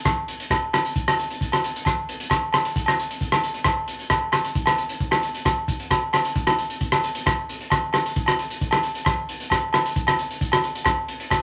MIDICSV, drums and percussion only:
0, 0, Header, 1, 2, 480
1, 0, Start_track
1, 0, Tempo, 450789
1, 1017, Time_signature, 4, 2, 24, 8
1, 12160, End_track
2, 0, Start_track
2, 0, Title_t, "Drums"
2, 55, Note_on_c, 9, 68, 60
2, 58, Note_on_c, 9, 36, 89
2, 59, Note_on_c, 9, 37, 66
2, 59, Note_on_c, 9, 42, 50
2, 162, Note_off_c, 9, 68, 0
2, 164, Note_off_c, 9, 36, 0
2, 165, Note_off_c, 9, 37, 0
2, 165, Note_off_c, 9, 42, 0
2, 300, Note_on_c, 9, 42, 48
2, 407, Note_off_c, 9, 42, 0
2, 425, Note_on_c, 9, 42, 48
2, 532, Note_off_c, 9, 42, 0
2, 538, Note_on_c, 9, 36, 66
2, 541, Note_on_c, 9, 68, 59
2, 542, Note_on_c, 9, 37, 62
2, 542, Note_on_c, 9, 42, 44
2, 644, Note_off_c, 9, 36, 0
2, 647, Note_off_c, 9, 68, 0
2, 648, Note_off_c, 9, 37, 0
2, 648, Note_off_c, 9, 42, 0
2, 781, Note_on_c, 9, 68, 57
2, 787, Note_on_c, 9, 37, 70
2, 787, Note_on_c, 9, 42, 47
2, 888, Note_off_c, 9, 68, 0
2, 894, Note_off_c, 9, 37, 0
2, 894, Note_off_c, 9, 42, 0
2, 905, Note_on_c, 9, 42, 44
2, 1012, Note_off_c, 9, 42, 0
2, 1020, Note_on_c, 9, 36, 82
2, 1023, Note_on_c, 9, 42, 47
2, 1126, Note_off_c, 9, 36, 0
2, 1129, Note_off_c, 9, 42, 0
2, 1148, Note_on_c, 9, 68, 67
2, 1149, Note_on_c, 9, 37, 69
2, 1254, Note_off_c, 9, 68, 0
2, 1256, Note_off_c, 9, 37, 0
2, 1268, Note_on_c, 9, 42, 43
2, 1375, Note_off_c, 9, 42, 0
2, 1390, Note_on_c, 9, 42, 49
2, 1497, Note_off_c, 9, 42, 0
2, 1502, Note_on_c, 9, 36, 65
2, 1512, Note_on_c, 9, 42, 43
2, 1608, Note_off_c, 9, 36, 0
2, 1618, Note_off_c, 9, 42, 0
2, 1621, Note_on_c, 9, 68, 63
2, 1632, Note_on_c, 9, 37, 69
2, 1728, Note_off_c, 9, 68, 0
2, 1739, Note_off_c, 9, 37, 0
2, 1749, Note_on_c, 9, 42, 52
2, 1855, Note_off_c, 9, 42, 0
2, 1874, Note_on_c, 9, 42, 49
2, 1971, Note_on_c, 9, 68, 54
2, 1981, Note_off_c, 9, 42, 0
2, 1982, Note_on_c, 9, 36, 84
2, 1989, Note_on_c, 9, 37, 62
2, 1989, Note_on_c, 9, 42, 49
2, 2077, Note_off_c, 9, 68, 0
2, 2089, Note_off_c, 9, 36, 0
2, 2096, Note_off_c, 9, 37, 0
2, 2096, Note_off_c, 9, 42, 0
2, 2224, Note_on_c, 9, 42, 58
2, 2330, Note_off_c, 9, 42, 0
2, 2344, Note_on_c, 9, 42, 51
2, 2447, Note_on_c, 9, 68, 60
2, 2450, Note_off_c, 9, 42, 0
2, 2457, Note_on_c, 9, 36, 58
2, 2459, Note_on_c, 9, 37, 62
2, 2459, Note_on_c, 9, 42, 47
2, 2554, Note_off_c, 9, 68, 0
2, 2564, Note_off_c, 9, 36, 0
2, 2565, Note_off_c, 9, 37, 0
2, 2565, Note_off_c, 9, 42, 0
2, 2689, Note_on_c, 9, 68, 60
2, 2703, Note_on_c, 9, 37, 74
2, 2703, Note_on_c, 9, 42, 54
2, 2796, Note_off_c, 9, 68, 0
2, 2810, Note_off_c, 9, 37, 0
2, 2810, Note_off_c, 9, 42, 0
2, 2822, Note_on_c, 9, 42, 51
2, 2929, Note_off_c, 9, 42, 0
2, 2937, Note_on_c, 9, 36, 80
2, 2941, Note_on_c, 9, 42, 55
2, 3044, Note_off_c, 9, 36, 0
2, 3046, Note_on_c, 9, 68, 64
2, 3047, Note_off_c, 9, 42, 0
2, 3068, Note_on_c, 9, 37, 69
2, 3152, Note_off_c, 9, 68, 0
2, 3175, Note_off_c, 9, 37, 0
2, 3186, Note_on_c, 9, 42, 46
2, 3293, Note_off_c, 9, 42, 0
2, 3308, Note_on_c, 9, 42, 49
2, 3414, Note_off_c, 9, 42, 0
2, 3417, Note_on_c, 9, 36, 64
2, 3422, Note_on_c, 9, 42, 45
2, 3524, Note_off_c, 9, 36, 0
2, 3529, Note_off_c, 9, 42, 0
2, 3537, Note_on_c, 9, 37, 74
2, 3538, Note_on_c, 9, 68, 63
2, 3643, Note_off_c, 9, 37, 0
2, 3645, Note_off_c, 9, 68, 0
2, 3656, Note_on_c, 9, 42, 51
2, 3762, Note_off_c, 9, 42, 0
2, 3771, Note_on_c, 9, 42, 48
2, 3877, Note_off_c, 9, 42, 0
2, 3880, Note_on_c, 9, 37, 72
2, 3880, Note_on_c, 9, 42, 48
2, 3889, Note_on_c, 9, 36, 87
2, 3897, Note_on_c, 9, 68, 64
2, 3987, Note_off_c, 9, 37, 0
2, 3987, Note_off_c, 9, 42, 0
2, 3996, Note_off_c, 9, 36, 0
2, 4004, Note_off_c, 9, 68, 0
2, 4128, Note_on_c, 9, 42, 52
2, 4235, Note_off_c, 9, 42, 0
2, 4249, Note_on_c, 9, 42, 48
2, 4355, Note_off_c, 9, 42, 0
2, 4365, Note_on_c, 9, 37, 65
2, 4365, Note_on_c, 9, 42, 44
2, 4369, Note_on_c, 9, 68, 62
2, 4370, Note_on_c, 9, 36, 63
2, 4472, Note_off_c, 9, 37, 0
2, 4472, Note_off_c, 9, 42, 0
2, 4475, Note_off_c, 9, 68, 0
2, 4476, Note_off_c, 9, 36, 0
2, 4601, Note_on_c, 9, 68, 60
2, 4607, Note_on_c, 9, 37, 65
2, 4607, Note_on_c, 9, 42, 47
2, 4708, Note_off_c, 9, 68, 0
2, 4714, Note_off_c, 9, 37, 0
2, 4714, Note_off_c, 9, 42, 0
2, 4732, Note_on_c, 9, 42, 49
2, 4839, Note_off_c, 9, 42, 0
2, 4849, Note_on_c, 9, 36, 84
2, 4850, Note_on_c, 9, 42, 50
2, 4955, Note_off_c, 9, 36, 0
2, 4956, Note_off_c, 9, 42, 0
2, 4958, Note_on_c, 9, 68, 73
2, 4973, Note_on_c, 9, 37, 70
2, 5065, Note_off_c, 9, 68, 0
2, 5080, Note_off_c, 9, 37, 0
2, 5091, Note_on_c, 9, 42, 46
2, 5198, Note_off_c, 9, 42, 0
2, 5210, Note_on_c, 9, 42, 49
2, 5317, Note_off_c, 9, 42, 0
2, 5328, Note_on_c, 9, 36, 70
2, 5328, Note_on_c, 9, 42, 45
2, 5435, Note_off_c, 9, 36, 0
2, 5435, Note_off_c, 9, 42, 0
2, 5444, Note_on_c, 9, 68, 68
2, 5450, Note_on_c, 9, 37, 67
2, 5550, Note_off_c, 9, 68, 0
2, 5556, Note_off_c, 9, 37, 0
2, 5569, Note_on_c, 9, 42, 49
2, 5675, Note_off_c, 9, 42, 0
2, 5692, Note_on_c, 9, 42, 48
2, 5798, Note_off_c, 9, 42, 0
2, 5806, Note_on_c, 9, 68, 61
2, 5809, Note_on_c, 9, 36, 86
2, 5812, Note_on_c, 9, 37, 62
2, 5812, Note_on_c, 9, 42, 48
2, 5913, Note_off_c, 9, 68, 0
2, 5916, Note_off_c, 9, 36, 0
2, 5918, Note_off_c, 9, 37, 0
2, 5918, Note_off_c, 9, 42, 0
2, 6050, Note_on_c, 9, 36, 69
2, 6053, Note_on_c, 9, 42, 50
2, 6156, Note_off_c, 9, 36, 0
2, 6160, Note_off_c, 9, 42, 0
2, 6172, Note_on_c, 9, 42, 49
2, 6279, Note_off_c, 9, 42, 0
2, 6288, Note_on_c, 9, 68, 60
2, 6290, Note_on_c, 9, 36, 65
2, 6293, Note_on_c, 9, 37, 64
2, 6293, Note_on_c, 9, 42, 52
2, 6395, Note_off_c, 9, 68, 0
2, 6397, Note_off_c, 9, 36, 0
2, 6400, Note_off_c, 9, 37, 0
2, 6400, Note_off_c, 9, 42, 0
2, 6528, Note_on_c, 9, 68, 66
2, 6534, Note_on_c, 9, 37, 71
2, 6534, Note_on_c, 9, 42, 49
2, 6634, Note_off_c, 9, 68, 0
2, 6640, Note_off_c, 9, 37, 0
2, 6640, Note_off_c, 9, 42, 0
2, 6652, Note_on_c, 9, 42, 49
2, 6758, Note_off_c, 9, 42, 0
2, 6766, Note_on_c, 9, 42, 50
2, 6769, Note_on_c, 9, 36, 82
2, 6873, Note_off_c, 9, 42, 0
2, 6876, Note_off_c, 9, 36, 0
2, 6887, Note_on_c, 9, 68, 68
2, 6891, Note_on_c, 9, 37, 72
2, 6993, Note_off_c, 9, 68, 0
2, 6998, Note_off_c, 9, 37, 0
2, 7012, Note_on_c, 9, 42, 48
2, 7118, Note_off_c, 9, 42, 0
2, 7133, Note_on_c, 9, 42, 49
2, 7240, Note_off_c, 9, 42, 0
2, 7248, Note_on_c, 9, 42, 49
2, 7251, Note_on_c, 9, 36, 69
2, 7355, Note_off_c, 9, 42, 0
2, 7357, Note_off_c, 9, 36, 0
2, 7369, Note_on_c, 9, 37, 76
2, 7375, Note_on_c, 9, 68, 69
2, 7475, Note_off_c, 9, 37, 0
2, 7482, Note_off_c, 9, 68, 0
2, 7494, Note_on_c, 9, 42, 51
2, 7601, Note_off_c, 9, 42, 0
2, 7612, Note_on_c, 9, 42, 50
2, 7718, Note_off_c, 9, 42, 0
2, 7730, Note_on_c, 9, 68, 56
2, 7735, Note_on_c, 9, 36, 87
2, 7738, Note_on_c, 9, 37, 72
2, 7738, Note_on_c, 9, 42, 47
2, 7837, Note_off_c, 9, 68, 0
2, 7842, Note_off_c, 9, 36, 0
2, 7844, Note_off_c, 9, 37, 0
2, 7844, Note_off_c, 9, 42, 0
2, 7980, Note_on_c, 9, 42, 52
2, 8086, Note_off_c, 9, 42, 0
2, 8099, Note_on_c, 9, 42, 47
2, 8203, Note_on_c, 9, 68, 62
2, 8206, Note_off_c, 9, 42, 0
2, 8215, Note_on_c, 9, 36, 61
2, 8216, Note_on_c, 9, 37, 66
2, 8216, Note_on_c, 9, 42, 47
2, 8309, Note_off_c, 9, 68, 0
2, 8322, Note_off_c, 9, 36, 0
2, 8323, Note_off_c, 9, 37, 0
2, 8323, Note_off_c, 9, 42, 0
2, 8440, Note_on_c, 9, 68, 61
2, 8452, Note_on_c, 9, 37, 68
2, 8452, Note_on_c, 9, 42, 49
2, 8547, Note_off_c, 9, 68, 0
2, 8559, Note_off_c, 9, 37, 0
2, 8559, Note_off_c, 9, 42, 0
2, 8580, Note_on_c, 9, 42, 49
2, 8686, Note_off_c, 9, 42, 0
2, 8689, Note_on_c, 9, 42, 50
2, 8692, Note_on_c, 9, 36, 84
2, 8795, Note_off_c, 9, 42, 0
2, 8798, Note_off_c, 9, 36, 0
2, 8798, Note_on_c, 9, 68, 68
2, 8815, Note_on_c, 9, 37, 69
2, 8904, Note_off_c, 9, 68, 0
2, 8922, Note_off_c, 9, 37, 0
2, 8936, Note_on_c, 9, 42, 43
2, 9042, Note_off_c, 9, 42, 0
2, 9055, Note_on_c, 9, 42, 46
2, 9162, Note_off_c, 9, 42, 0
2, 9170, Note_on_c, 9, 42, 46
2, 9171, Note_on_c, 9, 36, 69
2, 9274, Note_on_c, 9, 68, 68
2, 9277, Note_off_c, 9, 42, 0
2, 9278, Note_off_c, 9, 36, 0
2, 9291, Note_on_c, 9, 37, 70
2, 9380, Note_off_c, 9, 68, 0
2, 9398, Note_off_c, 9, 37, 0
2, 9404, Note_on_c, 9, 42, 46
2, 9511, Note_off_c, 9, 42, 0
2, 9530, Note_on_c, 9, 42, 45
2, 9635, Note_on_c, 9, 68, 63
2, 9637, Note_off_c, 9, 42, 0
2, 9649, Note_on_c, 9, 37, 67
2, 9649, Note_on_c, 9, 42, 48
2, 9650, Note_on_c, 9, 36, 93
2, 9741, Note_off_c, 9, 68, 0
2, 9755, Note_off_c, 9, 37, 0
2, 9755, Note_off_c, 9, 42, 0
2, 9756, Note_off_c, 9, 36, 0
2, 9891, Note_on_c, 9, 42, 52
2, 9998, Note_off_c, 9, 42, 0
2, 10011, Note_on_c, 9, 42, 51
2, 10117, Note_on_c, 9, 68, 57
2, 10118, Note_off_c, 9, 42, 0
2, 10129, Note_on_c, 9, 36, 66
2, 10134, Note_on_c, 9, 37, 66
2, 10134, Note_on_c, 9, 42, 50
2, 10223, Note_off_c, 9, 68, 0
2, 10236, Note_off_c, 9, 36, 0
2, 10241, Note_off_c, 9, 37, 0
2, 10241, Note_off_c, 9, 42, 0
2, 10357, Note_on_c, 9, 68, 66
2, 10371, Note_on_c, 9, 37, 72
2, 10371, Note_on_c, 9, 42, 52
2, 10464, Note_off_c, 9, 68, 0
2, 10478, Note_off_c, 9, 37, 0
2, 10478, Note_off_c, 9, 42, 0
2, 10495, Note_on_c, 9, 42, 50
2, 10601, Note_off_c, 9, 42, 0
2, 10606, Note_on_c, 9, 36, 89
2, 10606, Note_on_c, 9, 42, 51
2, 10713, Note_off_c, 9, 36, 0
2, 10713, Note_off_c, 9, 42, 0
2, 10722, Note_on_c, 9, 68, 72
2, 10733, Note_on_c, 9, 37, 74
2, 10828, Note_off_c, 9, 68, 0
2, 10839, Note_off_c, 9, 37, 0
2, 10851, Note_on_c, 9, 42, 48
2, 10957, Note_off_c, 9, 42, 0
2, 10974, Note_on_c, 9, 42, 51
2, 11081, Note_off_c, 9, 42, 0
2, 11086, Note_on_c, 9, 36, 71
2, 11089, Note_on_c, 9, 42, 50
2, 11193, Note_off_c, 9, 36, 0
2, 11196, Note_off_c, 9, 42, 0
2, 11200, Note_on_c, 9, 68, 68
2, 11213, Note_on_c, 9, 37, 80
2, 11306, Note_off_c, 9, 68, 0
2, 11319, Note_off_c, 9, 37, 0
2, 11326, Note_on_c, 9, 42, 49
2, 11433, Note_off_c, 9, 42, 0
2, 11450, Note_on_c, 9, 42, 53
2, 11548, Note_on_c, 9, 68, 65
2, 11557, Note_off_c, 9, 42, 0
2, 11559, Note_on_c, 9, 37, 72
2, 11559, Note_on_c, 9, 42, 52
2, 11562, Note_on_c, 9, 36, 93
2, 11655, Note_off_c, 9, 68, 0
2, 11666, Note_off_c, 9, 37, 0
2, 11666, Note_off_c, 9, 42, 0
2, 11668, Note_off_c, 9, 36, 0
2, 11803, Note_on_c, 9, 42, 52
2, 11909, Note_off_c, 9, 42, 0
2, 11925, Note_on_c, 9, 42, 53
2, 12032, Note_off_c, 9, 42, 0
2, 12037, Note_on_c, 9, 68, 62
2, 12043, Note_on_c, 9, 36, 67
2, 12047, Note_on_c, 9, 37, 66
2, 12047, Note_on_c, 9, 42, 50
2, 12144, Note_off_c, 9, 68, 0
2, 12150, Note_off_c, 9, 36, 0
2, 12153, Note_off_c, 9, 37, 0
2, 12153, Note_off_c, 9, 42, 0
2, 12160, End_track
0, 0, End_of_file